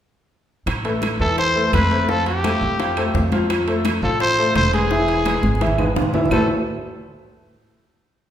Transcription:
0.66 upright bass A1, high bongo, high conga, high timbale, claves
0.84 grand piano A3 A4 B4, high conga, high timbale
1.02 high bongo, high conga, high timbale, claves
1.20 upright bass E2, grand piano E3 E4 E5, trumpet A4
1.38 trumpet C5, high bongo, high conga, high timbale
1.55 grand piano A3 A4 B4, high conga
1.73 upright bass F2, trumpet B4, high bongo, low bongo, high conga, high timbale, claves
1.91 grand piano A3 A4 C5, high conga, high timbale
2.08 grand piano F3 F4 F5, trumpet A4, high bongo, high conga
2.26 trumpet G4, high bongo, high conga, high timbale
2.44 grand piano A3 A4 C5, high bongo, high conga, high timbale, claves
2.61 upright bass F2, high bongo, high conga
2.79 grand piano F3 F4 F5, high bongo, high conga, high timbale
2.97 grand piano A3 A4 C5, high bongo, high conga, high timbale, claves
3.14 upright bass F2, high bongo, low bongo, high conga, low timbale
3.32 grand piano F3 F4 F5, high conga, high timbale
3.50 high bongo, high conga, high timbale, claves
3.67 grand piano A3 A4 C5, high conga, high timbale
3.85 high bongo, high conga, high timbale, claves
4.02 upright bass A1, grand piano F3 F4 F5, trumpet A4
4.20 trumpet C5, high bongo, high conga, high timbale
4.38 grand piano A3 A4 C5, high conga
4.55 upright bass E1, trumpet C5, high bongo, low bongo, high conga, high timbale, claves
4.73 grand piano G#3 G#4 B4, trumpet G#4, high conga, high timbale
4.90 grand piano E3 E4 E5, high bongo, high conga
5.08 high bongo, high conga, high timbale
5.25 grand piano G#3 G#4 B4, high bongo, high conga, high timbale, claves
5.43 upright bass G#1, high bongo, high conga
5.55 high conga
5.61 grand piano E3 E4 E5, high bongo, high timbale
5.67 low conga
5.78 grand piano G#3 G#4 B4, high bongo, low conga, high timbale, claves
5.96 upright bass A1, high bongo, low bongo, high timbale
6.02 low conga
6.14 grand piano E3 E4 E5, low conga, low timbale
6.26 low conga
6.31 upright bass A1, grand piano A3 E4 A4 B4 C5 E5, trumpet A4, low bongo, low conga, low timbale, claves

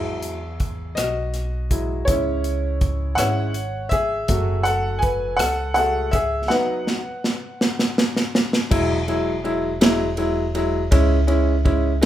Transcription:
Already playing: upright bass E2, upright piano F#3 G#3 E4 G#4 E5
0.23 closed hi-hat
0.60 kick, closed hi-hat
0.95 upright bass B1, upright piano F#4 D#5, cross-stick, closed hi-hat
1.34 cross-stick, closed hi-hat
1.71 upright piano F#3 G#3 E4, kick, closed hi-hat
2.05 upright bass C#2, upright piano G#3 C#4 E4 C#5, kick, closed hi-hat
2.44 closed hi-hat
2.81 kick, closed hi-hat
3.15 upright bass G#1, upright piano G#3 C#4 E4 C#5 F#5, cross-stick, closed hi-hat
3.54 closed hi-hat
3.89 upright piano G#4 E5, kick, closed hi-hat
4.28 upright bass F#1, upright piano F#3 A3 F#4, kick, closed hi-hat
4.63 upright piano A4 F#5, closed hi-hat
4.99 upright piano B4 G#5, closed hi-hat
5.03 kick
5.37 upright bass C#2, upright piano A4 F#5, cross-stick, closed hi-hat
5.74 upright piano A3 F#4 G#4 A4 F#5, closed hi-hat
6.11 upright piano G#4 E5, kick, closed hi-hat
6.48 upright piano F#3 B3 D#4 B4 F#5, snare
6.87 snare
7.24 snare
7.61 snare
7.79 snare
7.98 snare
8.16 snare
8.35 snare
8.53 snare
8.71 upright bass E1, upright piano F#3 G#3 E4, kick, crash
9.08 upright piano F#3 G#3 E4, ride
9.44 upright piano F#3 G#3 E4, ride
9.81 upright piano F#3 G#3 E4, snare, ride
10.17 upright piano F#3 G#3 E4, ride
10.55 upright piano F#3 G#3 E4, ride
10.91 upright bass C#2, upright piano G#3 C#4 E4, kick, ride
11.27 upright piano G#3 C#4 E4, ride
11.65 upright piano G#3 C#4 E4, kick, ride
12.01 upright piano G#3 C#4 E4

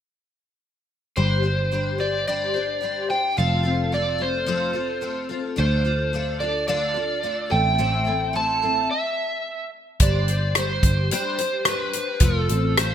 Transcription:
1.16 picked electric bass G1, twelve-string acoustic guitar G3 D4 G4 C5, electric slide guitar C5
1.43 twelve-string acoustic guitar D4 G4 C5
1.72 twelve-string acoustic guitar G3 D4 G4 C5
1.98 twelve-string acoustic guitar D4 G4 C5, electric slide guitar D5
2.28 twelve-string acoustic guitar G3 D4 G4 C5, electric slide guitar D5
2.54 twelve-string acoustic guitar D4 G4 C5
2.81 twelve-string acoustic guitar G3 D4 G4 C5
3.10 twelve-string acoustic guitar D4 G4 C5, electric slide guitar G5
3.37 picked electric bass F1, twelve-string acoustic guitar F3 A3 C4 F4 A4, electric slide guitar F5
3.63 twelve-string acoustic guitar C4 F4 A4
3.92 twelve-string acoustic guitar A3 C4 F4 A4, electric slide guitar D5
4.18 twelve-string acoustic guitar C4 F4 A4, electric slide guitar C5
4.46 twelve-string acoustic guitar F3 A3 C4 F4 A4
4.73 twelve-string acoustic guitar C4 F4 A4
5.01 twelve-string acoustic guitar A3 C4 F4 A4
5.29 twelve-string acoustic guitar C4 F4 A4
5.56 picked electric bass D2, twelve-string acoustic guitar D3 A3 D4 F4 A4, electric slide guitar C5
5.85 twelve-string acoustic guitar D4 F4 A4
6.13 twelve-string acoustic guitar A3 D4 F4 A4
6.40 twelve-string acoustic guitar D4 F4 A4, electric slide guitar D5
6.68 twelve-string acoustic guitar D3 A3 D4 F4 A4, electric slide guitar D5
6.94 twelve-string acoustic guitar D4 F4 A4
7.23 twelve-string acoustic guitar A3 D4 F4 A4
7.50 picked electric bass A1, twelve-string acoustic guitar A3 C4 E4 A4, electric slide guitar G5
7.78 twelve-string acoustic guitar A2 E3 A3 C4 E4 A4
8.05 twelve-string acoustic guitar A3 C4 E4 A4
8.33 twelve-string acoustic guitar A3 C4 E4 A4, electric slide guitar A5
8.62 twelve-string acoustic guitar A3 C4 E4 A4
8.91 electric slide guitar E5
10.00 picked electric bass G1, twelve-string acoustic guitar G3 D4 G4 C5, electric slide guitar D5, kick, closed hi-hat
10.28 twelve-string acoustic guitar G4 C5, closed hi-hat
10.32 twelve-string acoustic guitar D4
10.55 twelve-string acoustic guitar G3 D4 G4, electric slide guitar C5, cross-stick, closed hi-hat
10.59 twelve-string acoustic guitar C5
10.83 picked electric bass G1, twelve-string acoustic guitar D4 G4 C5, kick, closed hi-hat
11.11 twelve-string acoustic guitar G3 D4 G4 C5, electric slide guitar C5, closed hi-hat
11.38 twelve-string acoustic guitar D4 G4 C5, closed hi-hat
11.65 twelve-string acoustic guitar G3 D4 G4, electric slide guitar B4, cross-stick, closed hi-hat
11.69 twelve-string acoustic guitar C5
11.93 twelve-string acoustic guitar D4 G4 C5, closed hi-hat
12.20 picked electric bass F1, twelve-string acoustic guitar F3 A3 C4 F4 A4, electric slide guitar A4, kick, closed hi-hat
12.49 picked electric bass A1, twelve-string acoustic guitar C4 F4 A4, closed hi-hat
12.77 twelve-string acoustic guitar A3 C4 F4 A4, electric slide guitar C5, cross-stick, closed hi-hat

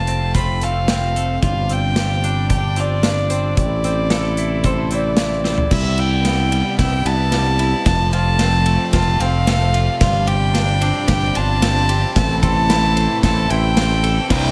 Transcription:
Already playing: fingered electric bass F1, clean electric guitar F2 A3 F4, string section C3 F3 A3, guzheng C4 E4, violin A5
0.07 clean electric guitar C4, closed hi-hat
0.35 guzheng C4, clean electric guitar F4, violin B5, kick, closed hi-hat
0.61 clean electric guitar A3, guzheng C4, violin F5, closed hi-hat
0.88 clean electric guitar C4, snare, closed hi-hat
1.16 clean electric guitar A3, closed hi-hat
1.42 fingered electric bass G1, clean electric guitar G2, string section G3 D4, guzheng F4, violin F5, kick, closed hi-hat
1.69 clean electric guitar C4, violin G5, closed hi-hat
1.96 clean electric guitar G4, snare, closed hi-hat
2.24 guzheng D4, clean electric guitar D4, closed hi-hat
2.49 clean electric guitar G4, kick, closed hi-hat
2.53 violin G5
2.76 clean electric guitar C4, guzheng F4, violin D5, closed hi-hat
3.03 clean electric guitar D4, snare, closed hi-hat
3.30 guzheng C4, clean electric guitar C4, closed hi-hat
3.57 fingered electric bass A1, clean electric guitar A2, string section C3 E3 A3 E4, violin D5, kick, closed hi-hat
3.84 guzheng C4, clean electric guitar C4, closed hi-hat
4.10 guzheng E4, clean electric guitar A4, snare, closed hi-hat
4.37 clean electric guitar E4, closed hi-hat
4.64 guzheng C4, clean electric guitar A4, violin C5, kick, closed hi-hat
4.91 guzheng C4, clean electric guitar C4, violin D5, closed hi-hat
5.17 clean electric guitar E4, snare, closed hi-hat
5.44 clean electric guitar C4, snare
5.58 floor tom
5.70 fingered electric bass C2, clean electric guitar C2, string section C3 G3 B3, guzheng E4, violin E5, kick, snare, crash
5.98 clean electric guitar E4, violin G5, ride
6.25 clean electric guitar B3, snare, ride
6.52 clean electric guitar G3, ride
6.79 fingered electric bass C2, clean electric guitar E4, violin G5, kick, snare, ride
7.05 fingered electric bass C2, clean electric guitar B3, guzheng E4, violin A5, ride
7.32 clean electric guitar G3, snare, ride
7.59 clean electric guitar E4, ride
7.85 fingered electric bass F1, clean electric guitar F2, string section F3 A3, violin A5, kick, snare, ride
8.13 guzheng C4, clean electric guitar F4, violin A5, ride
8.39 clean electric guitar C4, snare, ride
8.66 clean electric guitar A3, ride
8.93 fingered electric bass F1, guzheng C4, clean electric guitar F4, violin A5, kick, snare, ride
9.20 fingered electric bass F1, clean electric guitar C4, guzheng C4, violin F5, ride
9.47 clean electric guitar A3, snare, ride
9.74 clean electric guitar F4, ride
9.99 fingered electric bass G1, clean electric guitar G2, string section G3 D4, guzheng F4, violin F5, kick, snare, ride
10.27 clean electric guitar G4, violin G5, ride
10.54 clean electric guitar D4, snare, ride
10.81 clean electric guitar C4, guzheng D4, ride
11.07 fingered electric bass G1, clean electric guitar G4, violin G5, kick, snare, ride
11.35 fingered electric bass G1, clean electric guitar D4, guzheng F4, violin A5, ride
11.62 clean electric guitar C4, snare, ride
11.89 guzheng C4, clean electric guitar G4, ride
12.16 fingered electric bass A1, clean electric guitar A2, string section E3 A3 E4, violin A5, kick, snare, ride
12.42 guzheng C4, clean electric guitar A4, violin A5, kick, ride
12.69 clean electric guitar E4, guzheng E4, snare, ride
12.96 clean electric guitar C4, ride
13.23 fingered electric bass A1, guzheng C4, clean electric guitar A4, violin A5, kick, snare, ride
13.50 fingered electric bass A1, guzheng C4, clean electric guitar E4, violin G5, ride
13.77 clean electric guitar C4, snare, ride
14.03 clean electric guitar A4, ride
14.30 distorted electric guitar C2 G2 C3, fingered electric bass C2, clean electric guitar C2, string section G3 B3, guzheng E4, violin G5, kick, snare, crash

